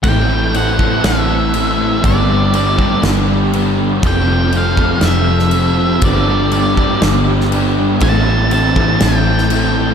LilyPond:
<<
  \new Staff \with { instrumentName = "Lead electric guitar" } { \time 4/4 \key a \dorian \tempo 4 = 120 g''4 fis''4 e''2 | d''4 d''4 r2 | g''4 f''4 e''2 | d''4 d''4 r2 |
a''4 a''4 g''2 | }
  \new Staff \with { instrumentName = "Overdriven electric guitar" } { \time 4/4 \key a \dorian <a, e c' e' a'>8 <c' e' a'>8 <e c' e' a'>8 <c' e' a'>4 <c' e' a'>8 <e c' e' a'>4 | <g, d g b d' g'>8 <g b d' g'>8 <g b d' g'>8 <g b d' g'>4 <g b d' g'>8 <g b d' g'>4 | <f c' f' a'>8 <c' f' a'>8 <f c' f' a'>8 <c' f' a'>4 <c' f' a'>8 <f c' f' a'>4 | <g, d g b d' g'>8 <g b d' g'>8 <g b d' g'>8 <g b d' g'>4 <g b d' g'>8 <g b d' g'>4 |
<a, e c' e' a'>8 <c' e' a'>8 <e c' e' a'>8 <c' e' a'>4 <c' e' a'>8 <e c' e' a'>4 | }
  \new Staff \with { instrumentName = "Overdriven electric guitar" } { \clef bass \time 4/4 \key a \dorian <a, e a c' e'>1 | <g, d g b d'>1 | <f, c f a c'>1 | <g, d g b d'>1 |
<a, e a c' e'>1 | }
  \new Staff \with { instrumentName = "Distorted electric guitar" } { \clef bass \time 4/4 \key a \dorian <a, e a>8 <e a>8 <a, e a>8 <e a>4. <a, e a>8 <e a>8 | <g, d g>8 <d g>8 <g, d g>8 <d g>4. <g, d g>8 <d g>8 | <f, c f>8 <c f>8 <f, c f>8 <c f>4. <f, c f>8 <c f>8 | <g, d g>8 <d g>8 <g, d g>8 <d g>4. <g, d g>8 <d g>8 |
<a, e a>8 <e a>8 <a, e a>8 <e a>4. <a, e a>8 <e a>8 | }
  \new Staff \with { instrumentName = "Fingered electric bass" } { \clef bass \time 4/4 \key a \dorian a,,2 a,,2 | g,,2 g,,2 | f,,2 f,,2 | g,,2 g,,2 |
a,,2 a,,2 | }
  \new DrumStaff \with { instrumentName = "Drums" } \drummode { \time 4/4 <cymc bd>4 cymc8 bd8 <cymc sn>4 cymc4 | <cymc bd>4 cymc8 bd8 <cymc sn>4 cymc4 | <cymc bd>4 cymc8 bd8 <cymc sn>8. sn16 cymc4 | <cymc bd>4 cymc8 bd8 <cymc sn>8. sn16 cymc4 |
<cymc bd>4 cymc8 bd8 <cymc sn>8. sn16 cymc4 | }
>>